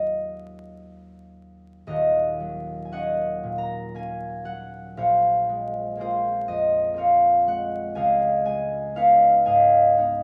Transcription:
Already playing: D#2 F#3 A#3 D#4 F4 D#5 F5
1.87 D#1 D#2 F#4 A#4 D#5
2.40 F#3
2.85 G#5
2.91 A#3 C#4 C#5 D#5 F#5
3.43 A#2
3.58 A#5
3.94 A#3 C#4 G#5
4.45 F#3 F#5
4.97 A#1 C5 C#5 F5
5.49 G#3
5.97 A#3 C4 F4 G#4
6.01 C5
6.48 F2 D#5
6.94 A#3 C4 C5
6.98 C#5 F5
7.47 G#3 F#5
7.95 C#2 D#5 F5 G#5
8.45 G#3 G#5
8.95 B3 D#4 B4 C#5 F5
9.46 G#2 D#5 F5 G#5
9.97 B3 D#4

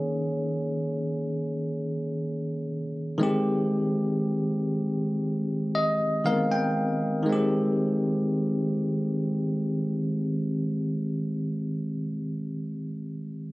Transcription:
Already playing: D#3 A#3 C#4 G#4 C#5
3.18 D#3 G#3 C4
3.23 G4
5.75 D#5
6.24 D#3 G#3 B3 A#4 F5
6.33 C4
6.52 G5
7.22 D#3 G#3
7.29 C4 G4

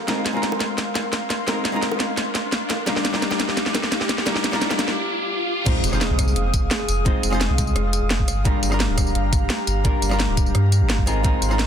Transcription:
Already playing: G#1 A#4 F5 C6, riser
0.07 G#3 C4 D#4 F4 A#4, snare, closed hi-hat, high bongo
0.25 G#1, snare, closed hi-hat
0.33 G#3 C4 D#4 F4 A#4
0.43 snare, closed hi-hat
0.52 D#1, high bongo
0.60 snare, closed hi-hat, high bongo
0.78 G#1, snare, closed hi-hat
0.95 snare, closed hi-hat, high bongo
1.04 G#1
1.13 snare, closed hi-hat
1.30 G#1, snare, closed hi-hat
1.47 G#3 C4 D#4 F4 A#4, snare, closed hi-hat, high bongo
1.65 G#1, snare, closed hi-hat
1.72 G#3 C4 D#4 F4 A#4
1.83 snare, closed hi-hat
1.92 D#1, high bongo
2.00 snare, closed hi-hat
2.17 G#1, snare, closed hi-hat
2.35 snare, closed hi-hat
2.44 G#1
2.52 snare, closed hi-hat
2.70 G4 D6, snare, closed hi-hat, high bongo
2.86 G3 D4 D#4 F4 A#4, snare, closed hi-hat, high bongo
2.96 snare
3.05 snare, closed hi-hat
3.12 G3 D4 D#4 F4 A#4, snare
3.22 snare, closed hi-hat
3.31 A#1, snare, high bongo
3.39 snare, closed hi-hat, high bongo
3.49 snare
3.57 snare, closed hi-hat
3.66 snare
3.75 snare, closed hi-hat, high bongo
3.84 snare
3.92 snare, closed hi-hat
4.01 snare
4.09 snare, closed hi-hat
4.18 snare
4.26 G3 D4 D#4 F4 A#4, snare, closed hi-hat, high bongo
4.36 snare
4.44 snare, closed hi-hat
4.51 G3 D4 D#4 F4, snare
4.55 A#4
4.62 snare, closed hi-hat
4.70 snare, high bongo
4.79 snare, closed hi-hat, high bongo
4.88 snare
5.65 G#3 C4 D#4 F4 G#4 C5 F5 D#6, kick, closed hi-hat, crash, impact
5.84 F1, closed hi-hat, tambourine
5.91 G#3 C4 D#4 F4 C5, cross-stick, tambourine
6.01 snare, closed hi-hat, tambourine
6.10 C2
6.19 kick, cross-stick, closed hi-hat, tambourine
6.28 tambourine
6.36 F1, closed hi-hat
6.54 kick, closed hi-hat, tambourine
6.63 F1
6.71 snare, closed hi-hat
6.88 F1, closed hi-hat, tambourine
7.05 G#3 C4 D#4 F4 C5, kick, closed hi-hat
7.23 F1, closed hi-hat, tambourine
7.30 G#3 C4 D#4 F4 C5, cross-stick, tambourine
7.41 snare, closed hi-hat, tambourine
7.50 C2
7.58 kick, closed hi-hat, tambourine
7.67 tambourine
7.76 F1, cross-stick, closed hi-hat
7.93 closed hi-hat, tambourine
8.02 F1
8.10 snare, closed hi-hat
8.20 kick
8.28 G1, cross-stick, closed hi-hat, tambourine
8.44 G3 A#3 D4 F4 G4 A#4 A#5, kick, closed hi-hat
8.63 G1, closed hi-hat, tambourine
8.70 G3 A#3 D4 F4 A#4, cross-stick, tambourine
8.80 snare, closed hi-hat, tambourine
8.89 D1
8.98 kick, cross-stick, closed hi-hat, tambourine
9.07 tambourine
9.15 G1, closed hi-hat
9.33 kick, closed hi-hat, tambourine
9.42 G1
9.50 snare, closed hi-hat
9.67 G1, closed hi-hat, tambourine
9.84 G3 A#3 D4 F4 A#4, kick, closed hi-hat
10.02 G1, closed hi-hat, tambourine
10.09 G3 A#3 D4 F4 A#4, cross-stick, tambourine
10.20 snare, closed hi-hat, tambourine
10.29 D1
10.37 kick, closed hi-hat, tambourine
10.46 tambourine
10.55 G2, cross-stick, closed hi-hat
10.72 closed hi-hat, tambourine
10.81 G1
10.90 snare, closed hi-hat
10.99 kick
11.06 G#1 G#3 C4 D#4 F4 A#4 F5 C6, cross-stick, closed hi-hat, tambourine
11.23 G#3 C4 D#4 F4 A#4, kick, closed hi-hat
11.42 G#1, closed hi-hat, tambourine
11.49 G#3 C4 D#4 F4, cross-stick, tambourine
11.53 A#4
11.59 snare, closed hi-hat, tambourine

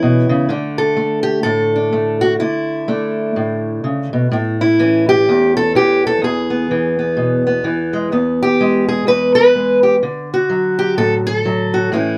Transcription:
Already playing: E2 E3 A3 C#4 E4
0.03 B2
0.29 C#3
0.49 D3 A3 D4
0.78 A4
0.97 A3
1.23 G4
1.43 A2 A4
1.76 D4
1.93 A3
2.21 F#4
2.40 D3 E4
2.88 A3 D4
3.36 A2
3.84 C#3
4.13 B2
4.32 A2 A3
4.61 E4
4.79 E3 C#4
5.09 G4
5.29 E2
5.57 A4
5.75 E3 G4
6.07 A4
6.22 E2 G#4
6.50 B3
6.71 E3
6.99 B3
7.17 B2
7.47 B3
7.64 E3
7.93 G#3
8.12 E2 B3
8.43 G4
8.61 G#3
8.89 G#4
9.07 E2 B4
9.35 B4
9.55 G#3
9.83 G4
10.03 D3
10.34 F#4
10.49 F#3
10.79 G4
10.98 A2 A4
11.27 A4
11.45 F#3
11.74 F#4
11.92 A2 E3 A3 C#4 E4

